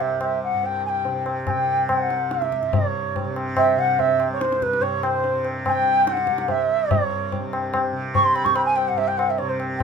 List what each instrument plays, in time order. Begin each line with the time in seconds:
Already playing: tanpura G2 C3
0.00 tanpura C2, bansuri E5, tabla na
0.21 bansuri E5, tabla na
0.43 bansuri F#5
0.53 tanpura G2
0.63 bansuri G5, tabla tin
0.86 bansuri G5 G#5
1.05 tanpura C3, tabla tin
1.26 tabla na
1.47 bansuri G5 G#5, tabla na, tabla ge
1.56 tanpura C3
1.89 bansuri F#5, tabla na, tabla ge
2.08 tanpura C2, tabla te
2.31 bansuri E5, tabla te
2.42 tabla te
2.52 tabla ke
2.60 tanpura G2, tabla te
2.73 tanpura G2, bansuri C#5, tabla tin, tabla ge
3.16 tabla tin, tabla ge
3.24 tanpura C3
3.36 tabla na
3.57 bansuri E5, tabla na, tabla ge
3.76 tanpura C3, bansuri F#5
3.99 bansuri E5, tabla tin, tabla ge
4.20 tabla na
4.27 tanpura C2
4.32 bansuri C#5
4.41 bansuri C5, tabla te
4.52 tabla te
4.62 bansuri B4, tabla ke
4.73 tabla te
4.79 tanpura G2, bansuri C#5, tabla tin
5.03 bansuri C5, tabla na
5.24 tabla tin
5.31 tanpura C3
5.45 tabla na
5.66 bansuri G#5, tabla na, tabla ge
5.71 bansuri G5
5.83 tanpura C3
6.07 bansuri G5, tabla te
6.12 bansuri F#5
6.17 tabla te
6.27 tabla ke
6.37 tanpura C2, tabla te
6.48 bansuri E5, tabla tin, tabla ge
6.88 tanpura G2, bansuri C#5, tabla tin, tabla ge
7.32 tabla tin, tabla ge
7.40 tanpura C3
7.53 tabla na
7.74 tabla na, tabla ge
7.92 tanpura C3
8.15 bansuri C#6, tabla tin, tabla ge
8.24 bansuri C6
8.35 bansuri B5, tabla na
8.41 tanpura C2, bansuri C#6
8.46 tabla ke
8.55 bansuri B5, tabla na
8.65 bansuri G#5
8.76 bansuri G5, tabla na
8.88 tanpura G2, bansuri F#5
8.97 bansuri E5, tabla tin
9.08 bansuri G5
9.17 bansuri F#5, tabla na
9.30 bansuri E5
9.38 tanpura C3, bansuri C#5, tabla tin
9.49 bansuri C5
9.60 tabla na
9.77 bansuri G5